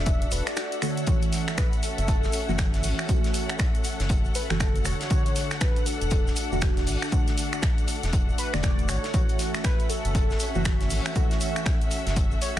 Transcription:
Already playing: sub bass E1, synth stab D3 A3 F#4, ambient pad A3 F#4 D5, string section D4 A4 E5 F#5, soft synth lead E5
0.06 kick, closed hi-hat, swell, shaker
0.22 closed hi-hat, shaker
0.32 sub bass E1, soft synth lead B4, closed hi-hat, open hi-hat, shaker
0.46 soft synth lead D5, finger snap, snare, closed hi-hat, shaker
0.56 finger snap, snare, closed hi-hat, shaker
0.72 closed hi-hat, shaker
0.82 synth stab D3 A3 F#4, soft synth lead C#5, finger snap, open hi-hat, shaker
0.97 closed hi-hat, shaker
1.07 synth stab E3 A3 F#4, ambient pad A3 F#4 E5, string section C#4, kick, closed hi-hat, shaker
1.22 closed hi-hat, shaker
1.32 snare, closed hi-hat, open hi-hat, shaker
1.47 finger snap, snare, shaker
1.58 soft synth lead B4, finger snap, kick, snare, closed hi-hat, shaker
1.73 closed hi-hat, shaker
1.83 soft synth lead A4, closed hi-hat, open hi-hat, shaker
1.98 sub bass F#1, closed hi-hat, shaker
2.08 kick, closed hi-hat, shaker
2.23 snare, shaker
2.33 closed hi-hat, open hi-hat, shaker
2.48 sub bass F#1, synth stab E3 A3 F#4, shaker
2.58 synth stab A3, finger snap, kick, snare, closed hi-hat, shaker
2.74 snare, closed hi-hat, shaker
2.83 sub bass A1, open hi-hat, shaker
2.99 finger snap, shaker
3.09 synth stab E3 A3 F#4, kick, closed hi-hat, shaker
3.24 snare, closed hi-hat, shaker
3.34 closed hi-hat, open hi-hat, shaker
3.49 finger snap, closed hi-hat, shaker
3.59 finger snap, kick, snare, closed hi-hat, shaker
3.75 closed hi-hat, shaker
3.84 closed hi-hat, open hi-hat, shaker
4.00 sub bass F#1, snare, closed hi-hat, shaker
4.09 kick, closed hi-hat, shaker
4.25 shaker
4.35 soft synth lead B4, closed hi-hat, open hi-hat, shaker
4.50 sub bass F#1, synth stab E3 A3 F#4, soft synth lead A4, finger snap, snare, shaker
4.60 synth stab D3 A3 F#4, finger snap, kick, snare, closed hi-hat, shaker
4.76 closed hi-hat, shaker
4.85 sub bass E1, ambient pad A3 D4, string section D4, soft synth lead C#5, finger snap, closed hi-hat, open hi-hat, shaker
5.01 snare, closed hi-hat, shaker
5.10 synth stab D3 A3 F#4, kick, closed hi-hat, shaker
5.26 closed hi-hat, shaker
5.36 snare, closed hi-hat, open hi-hat, shaker
5.51 finger snap, snare, shaker
5.61 soft synth lead B4, finger snap, kick, snare, closed hi-hat, shaker
5.76 closed hi-hat, shaker
5.86 soft synth lead A4, closed hi-hat, open hi-hat, shaker
6.01 sub bass E1, closed hi-hat, shaker
6.10 kick, closed hi-hat, shaker
6.27 snare, shaker
6.36 closed hi-hat, open hi-hat, shaker
6.52 sub bass E1, synth stab D3 A3 F#4, shaker
6.61 synth stab D3, finger snap, kick, snare, closed hi-hat, shaker
6.77 snare, closed hi-hat, shaker
6.86 sub bass A1, open hi-hat, shaker
7.02 finger snap, shaker
7.12 synth stab D3 A3 F#4, kick, closed hi-hat, shaker
7.27 snare, closed hi-hat, shaker
7.38 closed hi-hat, open hi-hat, shaker
7.53 finger snap, closed hi-hat, shaker
7.62 finger snap, kick, snare, closed hi-hat, shaker
7.78 closed hi-hat, shaker
7.88 closed hi-hat, open hi-hat, shaker
8.03 sub bass E1, snare, closed hi-hat, shaker
8.13 kick, closed hi-hat, shaker
8.29 shaker
8.38 soft synth lead B4, closed hi-hat, open hi-hat, shaker
8.53 sub bass E1, synth stab D3 A3 F#4, soft synth lead D5, finger snap, snare, shaker
8.63 synth stab D3 A3 F#4, finger snap, kick, snare, closed hi-hat, shaker
8.79 closed hi-hat, shaker
8.88 sub bass A1, soft synth lead C#5, finger snap, closed hi-hat, open hi-hat, shaker
9.04 snare, closed hi-hat, shaker
9.14 synth stab E3 A3 F#4, string section C#4, ambient pad E5, kick, closed hi-hat, shaker
9.29 closed hi-hat, shaker
9.39 string section E5, snare, closed hi-hat, open hi-hat, shaker
9.54 finger snap, snare, shaker
9.64 soft synth lead B4, finger snap, kick, snare, closed hi-hat, shaker
9.79 closed hi-hat, shaker
9.89 soft synth lead A4, closed hi-hat, open hi-hat, shaker
10.05 sub bass F#1, closed hi-hat, shaker
10.15 kick, closed hi-hat, shaker
10.30 snare, shaker
10.40 closed hi-hat, open hi-hat, shaker
10.55 sub bass F#1, synth stab E3 A3 F#4, shaker
10.65 finger snap, kick, snare, closed hi-hat, shaker
10.81 snare, closed hi-hat, shaker
10.90 sub bass A1, open hi-hat, shaker
11.06 finger snap, shaker
11.15 synth stab E3 A3 F#4, kick, closed hi-hat, shaker
11.31 snare, closed hi-hat, shaker
11.41 closed hi-hat, open hi-hat, shaker
11.56 finger snap, closed hi-hat, shaker
11.66 finger snap, kick, snare, closed hi-hat, shaker
11.81 closed hi-hat, shaker
11.91 closed hi-hat, open hi-hat, shaker
12.07 sub bass F#1, snare, closed hi-hat, shaker
12.16 kick, closed hi-hat, shaker
12.31 shaker
12.41 soft synth lead C#5, closed hi-hat, open hi-hat, shaker

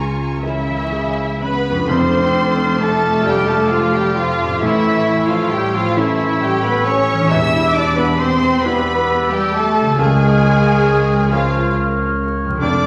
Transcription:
Already playing: cello section C#2, double bass section C#2, grand piano C#2 C#4 G#4, harp C#3 C#4, viola section F4, clarinet F4, violin section G#5 A#5 C#6
0.42 french horn section C#3, cello section E3, violin section E4 E5, harp G#4, grand piano A#4, viola section E5
0.92 grand piano G#4
1.42 french horn section B3, cello section B3, harp C#4, grand piano C#4, violin section B4 B5, viola section B4
1.70 harp F2
1.75 harp D4
1.80 harp F4
1.84 grand piano F1, harp A4, violin section C6
1.88 double bass section F1, grand piano F2, french horn section C4, cello section C4, clarinet A4, viola section C5, violin section C5, oboe D5, flute F6
2.79 french horn section A3, cello section A3, violin section A4 A5, viola section A4
3.25 french horn section G3, cello section G3, grand piano D4 F4 A4, viola section G4, violin section G4 G5
3.47 french horn section A3, cello section A3, viola section A4, violin section A4 A5
3.70 cello section F3, french horn section F3, viola section F4, violin section F4 F5
3.92 french horn section G3, cello section G3, viola section G4, violin section G4 G5
4.15 french horn section F3, cello section F3, viola section F4, violin section F4 F5
4.44 harp A2
4.49 harp C#4
4.53 harp E4
4.58 french horn section E3, viola section E4, harp A4, clarinet A4, violin section E5, flute E6
4.62 grand piano A1 A2, double bass section A1, cello section E3, violin section E4, oboe C#5
5.28 french horn section F3, cello section F3, violin section F4 F5, viola section F4
5.50 french horn section G3, cello section G3, violin section G4 G5, viola section G4
5.73 french horn section F3, cello section F3, violin section F4 F5, viola section F4
5.96 french horn section E3, cello section E3, grand piano C#4 E4 A4, violin section E4 E5, viola section E4, clarinet A4, oboe C#5, flute E6
6.42 french horn section G3, cello section G3, viola section G4, violin section G4 G5
6.62 french horn section B3, cello section B3, violin section B4 B5, viola section B4
6.86 french horn section C#4, cello section C#4, violin section C#5 C#6, viola section C#5
7.13 harp E3
7.17 harp D4
7.21 harp E4
7.26 grand piano E1 E2, harp G4, violin section E5, flute E6
7.31 double bass section E2, french horn section E4, cello section E4, clarinet G4, oboe D5, viola section E5, violin section E6
7.73 french horn section D4, cello section D4, violin section D5 D6, viola section D5
7.97 cello section B3, french horn section B3, violin section B4 B5, viola section B4
8.18 french horn section C4, cello section C4, violin section C5 C6, viola section C5
8.63 cello section B3, french horn section B3, grand piano D4 E4 G4, clarinet G4, violin section B4 B5, viola section B4, oboe D5, flute E6
9.30 cello section G3, french horn section G3, violin section G4 G5, viola section G4
9.52 cello section A3, french horn section A3, viola section A4, violin section A4 A5
9.81 harp C#3
9.85 harp C#4
9.90 harp F4
9.94 viola section G#4, harp A#4, clarinet A#4, violin section G#5
9.98 double bass section C#2, grand piano C#2 C#3, cello section G#3, french horn section G#3, violin section G#4, oboe C#5, flute F6
11.30 french horn section F3, cello section F3, grand piano C#4 F4 A#4, viola section F4, violin section F4 F5, clarinet A#4, oboe C#5, flute F6
12.44 harp F2
12.48 harp C3
12.53 harp F4
12.57 harp A4, oboe D5, flute F6
12.62 grand piano F1 F2, double bass section F2, french horn section D4, cello section D4, clarinet A4, viola section D5, violin section D5 D6

